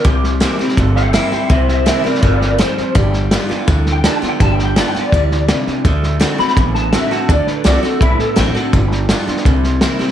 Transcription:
<<
  \new Staff \with { instrumentName = "Clean electric guitar" } { \time 4/4 \key g \mixolydian \tempo 4 = 166 g'2 r8 <e'' g''>8 <e'' g''>8 <e'' g''>8 | <c'' e''>8 <c'' e''>8 <c'' e''>8 <bes' d''>8 <bes' d''>8 <bes' d''>8 c''4 | r2 \tuplet 3/2 { r4 g''8 a''8 g''8 g''8 } | \tuplet 3/2 { a''8 g''8 g''8 a''8 g''8 d''8~ } d''4. r8 |
r4. b''8 r8 a''8 e''8 a''8 | d''8 b'8 d''8 a'8 e'8 a'8 d'8 d'8~ | d'2~ d'8 r4. | }
  \new Staff \with { instrumentName = "Steel-string acoustic guitar" } { \time 4/4 \key g \mixolydian << { r4 <e bes c' e'>8 <c' e'>8 r4 <e bes c' e'>8 <c' e'>8 | r4 <e bes c' e'>8 <c' e'>8 r2 | r4 <g b f'>8 <b f'>8 r4 <g b f'>8 <b f'>8 | r4 <g b f'>8 <b f'>8 r2 |
r4 <d a c' fis'>8 <c' fis'>8 r4 <d a c' fis'>8 <c' fis'>8 | r4 <d a c' fis'>8 <c' fis'>8 r4 <d a c' fis'>8 <c' fis'>8 | r4 <g b f'>8 <b f'>8 r4 <e bes c' e'>8 <c' e'>8 | } \\ { c2 g,2 | c2 e4 f4 | g2 d2 | g2 g4 c4 |
d2 a,2 | d2 a,2 | g2 c2 | } >> }
  \new Staff \with { instrumentName = "Clean electric guitar" } { \clef bass \time 4/4 \key g \mixolydian <c g>4 <c g>8 <c g>8 <c a>4 <c g>8 <c g>8 | <c g>4 <c g>8 <c g>8 <c a>4 <c g>8 <c g>8 | <g, d>4 <g, d>8 <g, d>8 <g, e>4 <g, d>8 <g, d>8 | <g, d>4 <g, d>8 <g, d>8 <g, e>4 <g, d>8 <g, d>8 |
<d a>4 <d a>8 <d a>8 <d b>4 <d a>8 <d a>8 | <d a>4 <d a>8 <d a>8 <d b>4 <d a>8 <d a>8 | <g, d>4 <g, d>8 <g, d>8 <c g>4 <c g>8 <c g>8 | }
  \new Staff \with { instrumentName = "Upright bass" } { \clef bass \time 4/4 \key g \mixolydian c,4. r8 g,,4. r8 | c,4. r8 g,,4. r8 | g,,4. r8 d,4. r8 | g,,4. r8 d,4. r8 |
d,4. r8 a,,4. r8 | d,8 r8 c,8 r8 b,,8 r8 a,,8 r8 | g,,4. r8 c,4. r8 | }
  \new DrumStaff \with { instrumentName = "Drums" } \drummode { \time 4/4 <bd sn>8 sn8 <hhp sn>8 sn16 sn16 <bd sn>8 sn8 <hhp sn>8 sn8 | <bd sn>8 sn8 <hhp sn>8 sn16 sn16 <bd sn>8 sn8 <hhp sn>8 sn8 | <bd sn>8 sn8 <hhp sn>8 sn8 <bd sn>8 sn8 <hhp sn>8 sn8 | <bd sn>8 sn8 <hhp sn>8 sn8 <bd sn>8 sn8 <hhp sn>8 sn8 |
<bd sn>8 sn8 <hhp sn>8 sn16 sn16 <bd sn>8 sn8 <hhp sn>8 sn8 | <bd sn>8 sn8 <hhp sn>8 sn8 <bd sn>8 sn8 <hhp sn>8 sn8 | <bd sn>8 sn8 <hhp sn>8 sn16 sn16 <bd sn>8 sn8 <hhp sn>8 sn16 sn16 | }
>>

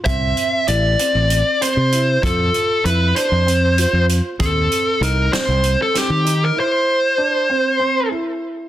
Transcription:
<<
  \new Staff \with { instrumentName = "Lead electric guitar" } { \time 7/8 \key c \major \tempo 4 = 97 e''4 d''4. c''4 | a'4 b'8 c''4. r8 | a'4 bes'8 c''8. a'16 g'8. bes'16 | c''2~ c''8 r4 | }
  \new Staff \with { instrumentName = "Grand piano" } { \time 7/8 \key c \major c'4 e'8 c'4 c'8 e'8 | f'4 e'8 d'8 c'8 f'4 | c'4 ees'8 c'4 c'8 ees'8 | e'4 d'8 c'8 c'8 e'4 | }
  \new Staff \with { instrumentName = "Fingered electric bass" } { \clef bass \time 7/8 \key c \major c,8 r8 a,,8 r16 a,,8 r8 c8. | f,8 r8 f,8 r16 f,4 f,8 r16 | ees,8 r8 c,8 r16 c,8 r8 ees8. | r2. r8 | }
  \new DrumStaff \with { instrumentName = "Drums" } \drummode { \time 7/8 <hh bd>8 hh8 hh8 hh8 hh8 hh8 hh8 | <hh bd>8 hh8 hh8 hh8 hh8 hh8 hh8 | <hh bd>8 hh8 hh8 <hh sn>8 hh8 <hh sn>8 hh8 | r4. r4 r4 | }
>>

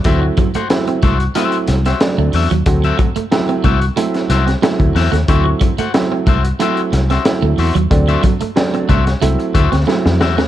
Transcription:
<<
  \new Staff \with { instrumentName = "Clean electric guitar" } { \time 4/4 \key d \mixolydian \tempo 4 = 92 <fis' c'' e''>16 r8 <fis' c'' fis''>16 r8 <fis' c'' e''>16 r16 <fis' c'' e''>16 r8 <fis' c'' e''>16 r8 <fis' c'' e''>16 r16 | r16 <fis' c'' e''>16 r4 <fis' c'' e''>16 r8. <fis' c'' e''>16 r8. <fis' c'' e''>16 r16 | <fis' c'' e''>16 r8 <fis' c'' fis''>16 r8 <fis' c'' e''>16 r16 <fis' c'' e''>16 r8 <fis' c'' e''>16 r8 <fis' c'' e''>16 r16 | r16 <fis' c'' e''>16 r4 <fis' c'' e''>16 r8. <fis' c'' e''>16 r8. <fis' c'' e''>16 r16 | }
  \new Staff \with { instrumentName = "Upright piano" } { \time 4/4 \key d \mixolydian <fis a c' e'>8 r8 <fis a c' e'>8 r8 <fis a c' e'>8 r8 <fis a c' d'>8 r8 | <fis a c' fis'>8 r8 <fis a c' e'>8 r8 <fis a c' e'>8 r8 <fis a c' e'>8 r8 | <fis a c' e'>8 r8 <fis a c' e'>8 r8 <fis a c' e'>8 r8 <fis a c' e'>8 r8 | <fis a c' d'>8 r8 <fis a c' d'>8 r8 <fis a c' e'>8 r8 <fis a c' e'>8 r8 | }
  \new Staff \with { instrumentName = "Clean electric guitar" } { \time 4/4 \key d \mixolydian r8 fis16 a16 r16 c'16 a16 r16 a16 r8 c'16 r16 a16 r16 fis16 | r8 fis16 a16 r16 c'16 a16 r16 a16 r8 c'16 a16 r8 a16 | r8 fis16 a16 r16 c'16 a16 r16 a16 r8 c'16 r16 a16 r16 fis16 | r8 fis16 a16 r16 c'16 a16 r16 a16 r8 c'16 a16 r8 a16 | }
  \new Staff \with { instrumentName = "Fingered electric bass" } { \clef bass \time 4/4 \key d \mixolydian d,8 r4 c,8 r8 c,8 r16 d,16 e,16 ees,16 | d,8 r4 c,8 r8 c,8 r16 d,16 e,16 ees,16 | d,8 r4 c,8 r8 c,8 r16 d,16 e,16 ees,16 | d,8 r4 c,8 c,16 r16 d,16 d,16 r16 f,16 e,16 ees,16 | }
  \new DrumStaff \with { instrumentName = "Drums" } \drummode { \time 4/4 <hh bd>8 <hh bd>16 hh16 <hh sn>16 hh16 <hh bd>16 hh16 hh16 hh16 <hh sn>16 <hh sn>16 <hh sn>8 hho16 hh16 | <hh bd>16 hh16 <hh bd>16 hh16 <hh sn>16 hh16 <hh bd>16 hh16 hh16 <hh sn>16 <hh sn>16 <hh sn>16 <hh sn>16 <hh bd>16 <hho sn>16 <hh sn>16 | <hh bd>8 <hh bd>16 hh16 <hh sn>8 <hh bd>16 hh16 hh16 hh16 <hh sn>16 <hh sn>16 <hh sn>8 hho16 hh16 | <hh bd>16 hh16 <hh bd>16 hh16 <hh sn>16 hh16 <hh bd>16 <hh sn>16 hh16 hh16 <hh bd>16 <hh sn>16 sn16 sn16 sn16 sn16 | }
>>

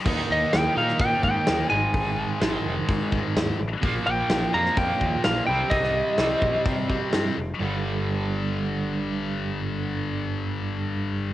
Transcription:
<<
  \new Staff \with { instrumentName = "Lead electric guitar" } { \time 4/4 \key g \phrygian \tempo 4 = 127 r8 ees''8 g''8 f''8 g''8 g''4 aes''8~ | aes''2~ aes''8 r4. | r8 g''4 bes''8 g''4 f''8 g''8 | ees''2 r2 |
r1 | r1 | }
  \new Staff \with { instrumentName = "Distorted electric guitar" } { \clef bass \time 4/4 \key g \phrygian <ees bes ees'>4. <ees bes ees'>4. <ees bes ees'>8 <aes, ees aes>8~ | <aes, ees aes>4 <aes, ees aes>4. <aes, ees aes>4 r8 | <bes, f bes>4. <bes, f bes>4. <bes, f bes>8 <c g c'>8~ | <c g c'>4 <c g c'>4. <c g c'>4 r8 |
<g, d g>1~ | <g, d g>1 | }
  \new Staff \with { instrumentName = "Overdriven electric guitar" } { \clef bass \time 4/4 \key g \phrygian <ees bes ees'>4. <ees bes ees'>2 <aes, ees aes>8~ | <aes, ees aes>4 <aes, ees aes>2~ <aes, ees aes>8 r8 | <bes, f bes>4. <bes, f bes>2 <c g c'>8~ | <c g c'>4 <c g c'>2~ <c g c'>8 r8 |
<g, d g>1~ | <g, d g>1 | }
  \new Staff \with { instrumentName = "Picked electric bass" } { \clef bass \time 4/4 \key g \phrygian ees,8 ees,8 ees,8 bes,8 bes,8 aes,8 ees,8 aes,,8 | aes,,4 aes,,8 f,,8 aes,4 ees,8 a,,8 | bes,,8 bes,,8 bes,,8 f,8 f,8 ees,8 bes,,8 c,8 | c,4 c,8 bes,,8 c4 g,8 f,,8 |
g,,1~ | g,,1 | }
  \new DrumStaff \with { instrumentName = "Drums" } \drummode { \time 4/4 <cymc bd>16 sn8. <hho sn>8. sn16 <hho bd>8 bd8 <hho sn>4 | <hho bd>4 <hho sn>4 <hho bd>8 bd8 <hho sn>4 | <hho bd>4 <hho sn>8. sn16 <hho bd>8 bd8 <hho sn>4 | <hho bd>16 sn8. <hho sn>8 bd8 <hho bd>8 bd8 <hho sn>4 |
r4 r4 r4 r4 | r4 r4 r4 r4 | }
>>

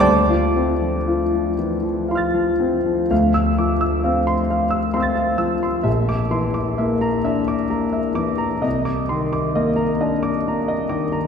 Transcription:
<<
  \new Staff \with { instrumentName = "Grand piano" } { \time 6/8 \key d \minor \tempo 4. = 43 << { <d'' a'' d'''>4. r8 <f'' c''' f''' a'''>4 | r2 <f'' c''' e''' a'''>4 | r2. | r2. | } \\ { r2. | f''16 e'''16 d'''16 e'''16 f''16 c'''16 f''16 e'''16 c'''16 f''16 e'''16 c'''16 | e''16 d'''16 c'''16 d'''16 e''16 bes''16 e''16 d'''16 bes''16 e''16 d'''16 bes''16 | ees''16 d'''16 c'''16 d'''16 ees''16 bes''16 ees''16 d'''16 bes''16 ees''16 d'''16 bes''16 | } >> }
  \new Staff \with { instrumentName = "Grand piano" } { \clef bass \time 6/8 \key d \minor d,16 f'16 c'16 f16 f'16 f16 e16 f16 f'16 f16 c'16 f16 | d,8 f8 c'8. r16 c'8 f8 | bes,,8 e8 bes8 d'8 bes8 e8 | c,8 ees8 bes8 d'8 bes8 ees8 | }
>>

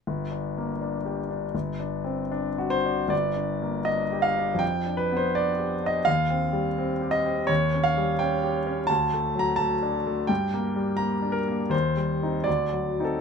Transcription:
\new Staff \with { instrumentName = "Grand piano" } { \time 2/4 \key g \minor \tempo 4 = 83 << { r2 | r4. c''8 | d''4 ees''8 f''8 | g''8 b'16 c''16 d''8. ees''16 |
f''4. ees''8 | des''8 f''8 g''4 | a''8. bes''16 a''4 | g''4 bes''8 bes'8 |
c''4 d''8. a'16 | } \\ { \tuplet 3/2 { g,,8 d'8 bes8 d'8 g'8 d'8 } | \tuplet 3/2 { g,,8 d'8 c'8 d'8 fis'8 d'8 } | \tuplet 3/2 { g,,8 d'8 bes8 d'8 g'8 d'8 } | \tuplet 3/2 { f,8 d'8 b8 d'8 g'8 d'8 } |
\tuplet 3/2 { ees,8 c'8 g8 c'8 g'8 c'8 } | \tuplet 3/2 { ees,8 des'8 g8 des'8 g'8 des'8 } | \tuplet 3/2 { d,8 a8 fis8 a8 d'8 a8 } | \tuplet 3/2 { g,8 bes8 g8 bes8 d'8 bes8 } |
\tuplet 3/2 { ees,8 g8 <c' ees'>8 d,8 fis8 <c' ees'>8 } | } >> }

